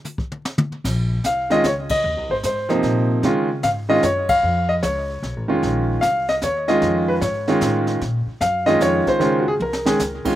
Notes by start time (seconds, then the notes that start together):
0.05 hi-hat pedal, mid tom
0.18 kick
0.32 mid tom
0.45 snare
0.58 mid tom
0.72 mid tom
0.84 A#1, brush sweep, kick, snare, crash
1.24 C2 F5, snare, hi-hat pedal
1.50 D#3 G#3 C#4 F4 D#5, snare
1.64 C#2 C#5, snare, hi-hat pedal
1.89 D#5, kick, ride
2.03 D#2, brush sweep
2.17 C2
2.30 G#1 C5
2.43 G#2 C5, snare, hi-hat pedal
2.69 C3 F3 A#3 D#4, snare
2.83 A#2, snare
3.23 C#3 D#3 G#3 C#4 F4, brush sweep, snare
3.63 G#2 F5, snare, hi-hat pedal
3.89 D#3 G#3 C#4 F4 D#5
4.03 F#2 C#5, snare, hi-hat pedal
4.29 F5, kick, ride
4.43 F2, brush sweep
4.69 D#5
4.83 C#2 C#5, snare, hi-hat pedal
5.22 B1, snare
5.36 A1
5.48 F1 D#3 G#3 C#4 F4
5.62 A#1, brush sweep, snare
6.01 C2 F5, snare, hi-hat pedal
6.29 D#5, snare
6.42 D#2 C#5, snare, hi-hat pedal
6.68 D#3 G#3 C#4 F4 D#5, snare
6.82 F2, brush sweep, snare
7.08 B4
7.21 G#2 C#5, snare, hi-hat pedal
7.47 D#3 G#3 C#4 F4, snare
7.61 A2, snare, hi-hat pedal
7.87 snare
8.01 A#2, brush sweep, snare
8.27 muted upright bass stroke
8.40 F#2 F5, snare, hi-hat pedal
8.66 D#3 G#3 C#4 F4 D#5, snare
8.80 F2 C#5, snare, hi-hat pedal
9.06 C5, muted upright bass stroke, kick, snare
9.19 C#2 D#3 G#3 C#4 F4, brush sweep, snare
9.39 F#4
9.48 G#4
9.59 C2 A#4, high tom
9.73 snare
9.86 D#3 G#3 C#4 G#4, snare
9.99 C#2, snare, hi-hat pedal
10.25 D#3 G#3 C#4 F4, muted upright bass stroke, kick, crash